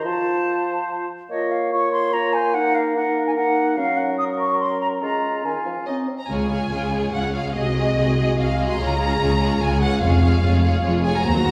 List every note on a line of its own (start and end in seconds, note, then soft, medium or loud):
0.04 1.09 F3 soft
0.04 1.07 F4 soft
0.04 1.07 C5 soft
0.04 1.07 A5 medium
1.30 3.73 A#3 soft
1.30 1.69 F4 soft
1.30 1.69 C#5 soft
1.30 1.53 D#5 medium
1.51 1.71 F5 soft
1.72 2.12 F4 soft
1.72 2.13 C#5 soft
1.72 1.92 C#6 medium
1.93 2.15 C6 medium
2.13 2.56 F4 soft
2.13 2.33 C#5 soft
2.13 2.35 A#5 medium
2.33 2.56 C5 soft
2.33 2.56 G#5 medium
2.54 2.95 D#4 soft
2.54 2.95 A#4 soft
2.54 2.76 F#5 medium
2.75 2.95 F5 medium
2.96 3.36 D#4 soft
2.96 3.36 A#4 soft
2.96 3.26 F#5 medium
3.27 3.31 G#5 medium
3.36 3.77 D#4 soft
3.36 3.76 A#4 soft
3.36 3.79 F#5 medium
3.77 4.99 F#3 medium
3.77 5.00 C#4 soft
3.77 5.04 A#4 soft
3.77 3.98 F5 medium
3.97 4.18 F#5 medium
4.18 4.24 D#6 medium
4.39 4.59 C#6 soft
4.59 4.80 C6 medium
4.81 4.87 A#5 soft
5.02 5.40 G#3 soft
5.02 5.43 C#4 soft
5.02 5.44 F4 soft
5.02 5.47 A#5 soft
5.44 5.54 D#3 soft
5.44 5.86 C#4 soft
5.44 5.86 F4 soft
5.44 5.87 G#5 soft
5.66 5.75 F3 soft
5.86 6.08 C4 soft
5.86 5.96 C#4 soft
5.86 6.08 D#4 soft
5.86 5.95 D#5 soft
6.08 6.18 C4 soft
6.19 6.30 A#5 soft
6.29 6.67 C#2 soft
6.29 6.67 C#3 soft
6.29 6.49 G#3 soft
6.29 6.48 F4 soft
6.29 6.50 G#4 soft
6.29 6.50 C#5 soft
6.29 7.13 G#5 soft
6.50 6.70 G#3 soft
6.50 6.70 F4 soft
6.50 6.70 G#4 soft
6.50 6.70 C#5 soft
6.71 7.09 C#2 soft
6.71 7.08 C#3 soft
6.71 6.91 G#3 soft
6.71 6.91 F4 soft
6.71 6.91 G#4 soft
6.71 6.92 C#5 soft
6.92 7.11 G#3 soft
6.92 7.12 F4 soft
6.92 7.12 G#4 soft
6.92 7.12 C#5 soft
7.13 7.50 C#2 soft
7.13 7.50 C#3 soft
7.13 7.33 G#3 soft
7.13 7.33 F4 soft
7.13 7.34 G#4 soft
7.13 7.34 C#5 soft
7.13 7.33 F#5 soft
7.34 7.54 G#3 soft
7.34 7.54 F4 soft
7.34 7.54 G#4 soft
7.34 7.55 C#5 soft
7.34 7.54 F5 medium
7.54 7.91 C2 soft
7.54 7.91 C3 soft
7.54 7.75 G#3 soft
7.54 7.75 F#4 soft
7.54 7.75 G#4 soft
7.54 7.75 D#5 soft
7.54 8.36 D#5 medium
7.76 7.96 G#3 soft
7.76 7.95 F#4 soft
7.76 7.96 G#4 soft
7.76 7.96 D#5 soft
7.96 8.33 C2 soft
7.96 8.33 C3 soft
7.96 8.17 G#3 soft
7.96 8.16 F#4 soft
7.96 8.16 G#4 soft
7.96 8.16 D#5 soft
8.17 8.37 G#3 soft
8.17 8.37 F#4 soft
8.17 8.37 G#4 soft
8.17 8.37 D#5 soft
8.37 8.74 C2 soft
8.37 8.74 C3 soft
8.37 8.57 G#3 soft
8.37 8.57 F#4 soft
8.37 8.58 G#4 soft
8.37 8.58 D#5 soft
8.37 8.68 F5 medium
8.58 8.78 G#3 soft
8.58 8.79 F#4 soft
8.58 8.79 G#4 soft
8.58 8.79 D#5 soft
8.69 8.79 C6 medium
8.79 9.16 C#2 soft
8.79 9.16 C#3 medium
8.79 8.98 G#3 soft
8.79 8.98 F4 soft
8.79 8.98 G#4 soft
8.79 8.99 C#5 soft
8.79 9.62 A#5 medium
8.99 9.19 G#3 soft
8.99 9.19 F4 soft
8.99 9.20 G#4 soft
8.99 9.20 C#5 soft
9.20 9.57 C#2 soft
9.20 9.57 C#3 medium
9.20 9.41 G#3 soft
9.20 9.41 F4 soft
9.20 9.40 G#4 soft
9.20 9.40 C#5 soft
9.41 9.61 G#3 soft
9.41 9.61 F4 soft
9.41 9.60 G#4 soft
9.41 9.61 C#5 soft
9.61 9.98 C#2 medium
9.61 9.98 C#3 soft
9.61 9.81 G#3 soft
9.61 9.81 F4 soft
9.61 9.82 G#4 soft
9.61 9.82 C#5 soft
9.61 9.82 G#5 medium
9.82 10.01 G#3 soft
9.82 10.01 F4 soft
9.82 10.01 G#4 soft
9.82 10.01 C#5 soft
9.82 10.02 F#5 medium
10.02 10.38 F1 soft
10.02 10.39 F2 medium
10.02 10.22 G#3 medium
10.02 10.22 F4 medium
10.02 10.22 G#4 medium
10.02 10.22 C#5 soft
10.02 10.82 F5 medium
10.23 10.42 G#3 soft
10.23 10.41 F4 soft
10.23 10.41 G#4 soft
10.23 10.41 C#5 soft
10.43 10.79 F1 soft
10.43 10.79 F2 medium
10.43 10.62 G#3 soft
10.43 10.62 F4 soft
10.43 10.63 G#4 medium
10.43 10.63 C#5 soft
10.63 10.82 G#3 soft
10.63 10.82 F4 soft
10.63 10.83 G#4 soft
10.63 10.83 C#5 soft
10.83 11.20 F1 medium
10.83 11.20 F2 medium
10.83 11.03 G#3 medium
10.83 11.03 F4 medium
10.83 11.03 G#4 soft
10.83 11.03 C#5 soft
11.04 11.24 G#3 soft
11.04 11.24 F4 soft
11.04 11.24 G#4 soft
11.04 11.25 C#5 soft
11.04 11.23 G#5 medium
11.24 11.29 D#2 medium
11.24 11.29 C4 medium
11.24 11.51 F#4 medium
11.24 11.51 C5 medium
11.24 11.51 A#5 medium
11.34 11.39 D#2 soft
11.34 11.38 F#3 soft
11.44 11.49 D#2 soft
11.44 11.48 D#3 soft